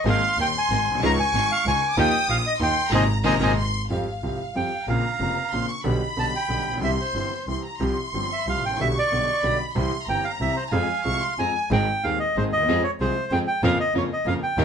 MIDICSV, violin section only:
0, 0, Header, 1, 2, 480
1, 0, Start_track
1, 0, Key_signature, -4, "major"
1, 0, Tempo, 318302
1, 83, Time_signature, 3, 2, 24, 8
1, 4880, Tempo, 326087
1, 5853, Key_signature, -4, "minor"
1, 17840, Tempo, 317460
1, 21780, End_track
2, 0, Start_track
2, 0, Title_t, "Violin section"
2, 0, Program_c, 0, 48
2, 68, Note_on_c, 0, 84, 98
2, 1473, Note_off_c, 0, 84, 0
2, 1535, Note_on_c, 0, 85, 93
2, 2805, Note_off_c, 0, 85, 0
2, 2860, Note_on_c, 0, 86, 68
2, 2966, Note_off_c, 0, 86, 0
2, 2970, Note_on_c, 0, 87, 100
2, 3905, Note_on_c, 0, 84, 96
2, 3920, Note_off_c, 0, 87, 0
2, 4355, Note_off_c, 0, 84, 0
2, 4380, Note_on_c, 0, 82, 90
2, 4859, Note_off_c, 0, 82, 0
2, 4877, Note_on_c, 0, 82, 83
2, 5328, Note_off_c, 0, 82, 0
2, 5381, Note_on_c, 0, 84, 88
2, 5828, Note_off_c, 0, 84, 0
2, 5860, Note_on_c, 0, 77, 59
2, 7246, Note_off_c, 0, 77, 0
2, 7285, Note_on_c, 0, 82, 74
2, 8247, Note_on_c, 0, 84, 74
2, 8254, Note_off_c, 0, 82, 0
2, 8492, Note_off_c, 0, 84, 0
2, 8500, Note_on_c, 0, 85, 69
2, 8736, Note_off_c, 0, 85, 0
2, 8737, Note_on_c, 0, 83, 83
2, 10096, Note_off_c, 0, 83, 0
2, 10164, Note_on_c, 0, 84, 73
2, 11065, Note_off_c, 0, 84, 0
2, 11133, Note_on_c, 0, 84, 62
2, 11353, Note_off_c, 0, 84, 0
2, 11375, Note_on_c, 0, 82, 59
2, 11596, Note_off_c, 0, 82, 0
2, 11617, Note_on_c, 0, 84, 74
2, 13057, Note_on_c, 0, 85, 76
2, 13066, Note_off_c, 0, 84, 0
2, 13990, Note_on_c, 0, 83, 74
2, 14005, Note_off_c, 0, 85, 0
2, 14465, Note_on_c, 0, 84, 75
2, 14473, Note_off_c, 0, 83, 0
2, 14912, Note_off_c, 0, 84, 0
2, 14926, Note_on_c, 0, 82, 75
2, 15889, Note_off_c, 0, 82, 0
2, 15908, Note_on_c, 0, 80, 70
2, 16374, Note_on_c, 0, 85, 76
2, 16386, Note_off_c, 0, 80, 0
2, 16605, Note_off_c, 0, 85, 0
2, 16615, Note_on_c, 0, 84, 68
2, 16866, Note_off_c, 0, 84, 0
2, 16881, Note_on_c, 0, 82, 71
2, 17121, Note_off_c, 0, 82, 0
2, 17123, Note_on_c, 0, 80, 56
2, 17344, Note_off_c, 0, 80, 0
2, 21780, End_track
0, 0, End_of_file